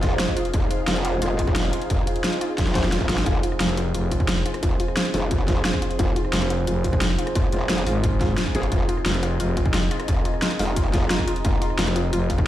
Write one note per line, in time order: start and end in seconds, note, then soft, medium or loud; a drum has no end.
0.00 0.18 F1 loud
0.00 12.47 D#4 medium
0.00 12.47 F4 medium
0.00 0.13 F4 medium
0.00 12.47 G#4 loud
0.00 12.47 C5 medium
0.00 3.24 D#5 medium
0.00 3.51 F5 medium
0.00 kick loud
0.00 snare soft
0.00 closed hi-hat medium
0.20 0.35 F4 medium
0.20 snare loud
0.20 closed hi-hat medium
0.28 kick medium
0.37 0.47 F4 medium
0.37 closed hi-hat medium
0.45 closed hi-hat soft
0.54 0.69 F1 loud
0.54 0.64 F4 medium
0.54 kick loud
0.54 closed hi-hat loud
0.71 0.86 F4 medium
0.71 closed hi-hat medium
0.88 1.21 F1 loud
0.88 0.98 F4 medium
0.88 snare loud
0.88 closed hi-hat loud
0.96 snare soft
0.96 closed hi-hat soft
1.05 1.15 F4 medium
1.05 closed hi-hat medium
1.22 1.72 F1 medium
1.22 1.37 F4 medium
1.22 closed hi-hat loud
1.39 1.49 F4 medium
1.39 kick medium
1.39 closed hi-hat medium
1.47 kick loud
1.56 1.66 F4 medium
1.56 snare loud
1.56 closed hi-hat loud
1.73 1.88 F4 medium
1.73 closed hi-hat medium
1.82 closed hi-hat soft
1.90 2.06 F1 loud
1.90 2.00 F4 medium
1.90 kick loud
1.90 closed hi-hat loud
2.07 2.17 F4 medium
2.07 closed hi-hat medium
2.16 closed hi-hat soft
2.24 2.39 F4 medium
2.24 snare loud
2.24 closed hi-hat loud
2.33 closed hi-hat soft
2.41 2.51 F4 medium
2.41 closed hi-hat medium
2.58 3.08 F1 medium
2.58 2.68 F4 medium
2.58 kick loud
2.58 snare medium
2.58 closed hi-hat loud
2.67 snare medium
2.75 2.85 C5 medium
2.75 kick loud
2.75 snare medium
2.75 closed hi-hat medium
2.84 snare medium
2.92 3.07 F4 loud
2.92 snare medium
2.92 closed hi-hat loud
3.01 kick medium
3.09 3.25 G#1 medium
3.09 3.15 F4 medium
3.09 snare medium
3.09 closed hi-hat medium
3.18 snare medium
3.18 closed hi-hat soft
3.26 3.42 F1 loud
3.26 3.36 F4 medium
3.26 8.70 F5 medium
3.26 kick loud
3.26 closed hi-hat medium
3.43 3.54 F4 medium
3.43 closed hi-hat medium
3.49 8.96 C5 medium
3.49 cross-stick soft
3.60 3.93 F1 medium
3.60 3.76 F4 medium
3.60 snare loud
3.60 closed hi-hat medium
3.69 cross-stick soft
3.69 snare soft
3.69 closed hi-hat soft
3.77 3.88 F4 medium
3.77 closed hi-hat medium
3.94 4.44 F1 loud
3.94 4.05 F4 medium
3.94 closed hi-hat medium
4.12 4.27 F4 medium
4.12 kick medium
4.12 closed hi-hat medium
4.20 kick loud
4.29 4.39 F4 medium
4.29 snare loud
4.29 closed hi-hat loud
4.37 cross-stick soft
4.46 4.56 F4 medium
4.46 closed hi-hat medium
4.54 cross-stick medium
4.54 closed hi-hat soft
4.63 4.78 F1 loud
4.63 4.78 F4 medium
4.63 kick loud
4.63 closed hi-hat medium
4.80 4.90 F4 medium
4.80 closed hi-hat medium
4.88 cross-stick soft
4.97 5.07 F4 medium
4.97 snare loud
4.97 closed hi-hat medium
5.05 cross-stick soft
5.05 closed hi-hat soft
5.14 5.64 F1 loud
5.14 5.29 F4 medium
5.14 open hi-hat medium
5.31 5.41 F4 medium
5.31 kick loud
5.31 closed hi-hat medium
5.48 5.58 F4 medium
5.48 kick loud
5.48 snare soft
5.48 closed hi-hat medium
5.65 5.80 F4 medium
5.65 snare loud
5.65 closed hi-hat medium
5.74 kick medium
5.74 cross-stick soft
5.82 5.92 F4 medium
5.82 closed hi-hat medium
5.91 closed hi-hat soft
5.99 6.15 F1 loud
5.99 6.09 F4 medium
5.99 kick loud
5.99 closed hi-hat medium
6.16 6.31 F4 medium
6.16 closed hi-hat medium
6.25 cross-stick soft
6.33 6.66 F1 medium
6.33 6.43 F4 medium
6.33 snare loud
6.33 closed hi-hat medium
6.42 cross-stick soft
6.42 snare soft
6.42 closed hi-hat soft
6.50 6.60 F4 medium
6.50 closed hi-hat medium
6.67 7.17 F1 loud
6.67 6.82 F4 medium
6.67 closed hi-hat medium
6.84 6.94 F4 medium
6.84 kick medium
6.84 closed hi-hat medium
6.93 kick loud
7.01 7.11 F4 medium
7.01 snare loud
7.01 closed hi-hat medium
7.10 cross-stick soft
7.19 7.34 F4 medium
7.19 closed hi-hat medium
7.27 cross-stick medium
7.27 closed hi-hat soft
7.35 7.51 F1 medium
7.35 7.46 F4 medium
7.35 kick loud
7.35 closed hi-hat medium
7.52 7.85 F1 medium
7.52 7.63 F4 medium
7.52 closed hi-hat medium
7.61 cross-stick soft
7.69 7.85 F4 medium
7.69 snare loud
7.69 closed hi-hat medium
7.78 cross-stick soft
7.78 closed hi-hat soft
7.87 8.36 G#1 loud
7.87 7.97 F4 medium
7.87 open hi-hat medium
8.04 8.14 F4 medium
8.04 kick loud
8.04 closed hi-hat medium
8.21 8.31 F4 medium
8.21 kick loud
8.21 snare soft
8.21 closed hi-hat medium
8.38 8.48 F4 medium
8.38 snare loud
8.38 closed hi-hat medium
8.46 kick medium
8.46 cross-stick soft
8.55 8.70 G#1 medium
8.55 8.65 G#4 loud
8.55 closed hi-hat medium
8.63 closed hi-hat soft
8.72 8.88 F1 loud
8.72 8.82 F4 medium
8.72 12.47 A#5 medium
8.72 kick loud
8.72 closed hi-hat medium
8.89 8.99 F4 medium
8.89 closed hi-hat medium
8.94 12.47 D#5 medium
8.94 cross-stick soft
9.06 9.39 F1 loud
9.06 9.21 F4 medium
9.06 snare loud
9.06 closed hi-hat medium
9.14 cross-stick soft
9.14 snare soft
9.14 closed hi-hat soft
9.23 9.33 F4 medium
9.23 closed hi-hat medium
9.40 9.90 F1 loud
9.40 9.50 F4 medium
9.40 closed hi-hat medium
9.57 9.72 F4 medium
9.57 kick medium
9.57 closed hi-hat medium
9.66 kick loud
9.74 9.84 F4 medium
9.74 snare loud
9.74 closed hi-hat medium
9.83 cross-stick soft
9.91 10.01 F4 medium
9.91 closed hi-hat medium
10.00 cross-stick medium
10.00 closed hi-hat soft
10.08 10.24 F1 loud
10.08 10.23 F4 medium
10.08 kick loud
10.08 closed hi-hat medium
10.25 10.35 F4 medium
10.25 closed hi-hat medium
10.34 cross-stick soft
10.42 10.52 F4 medium
10.42 snare loud
10.42 closed hi-hat medium
10.51 cross-stick soft
10.51 closed hi-hat soft
10.59 11.09 F1 loud
10.59 10.74 F4 medium
10.59 open hi-hat medium
10.76 10.86 F4 medium
10.76 kick medium
10.76 closed hi-hat medium
10.93 11.04 F4 medium
10.93 kick loud
10.93 snare soft
10.93 closed hi-hat medium
11.11 11.26 F4 medium
11.11 snare loud
11.11 closed hi-hat loud
11.19 kick medium
11.19 cross-stick soft
11.28 11.38 F4 medium
11.28 closed hi-hat medium
11.36 closed hi-hat soft
11.45 11.60 F1 medium
11.45 11.55 F4 medium
11.45 kick loud
11.45 closed hi-hat medium
11.62 11.77 F4 medium
11.62 closed hi-hat medium
11.70 cross-stick soft
11.79 12.11 F1 medium
11.79 11.89 F4 medium
11.79 snare loud
11.79 closed hi-hat medium
11.87 cross-stick soft
11.87 snare soft
11.87 closed hi-hat soft
11.96 12.06 F4 medium
11.96 closed hi-hat medium
12.13 12.47 F1 loud
12.13 12.28 F4 medium
12.13 closed hi-hat loud
12.30 12.40 F4 medium
12.30 kick medium
12.30 closed hi-hat medium
12.38 kick loud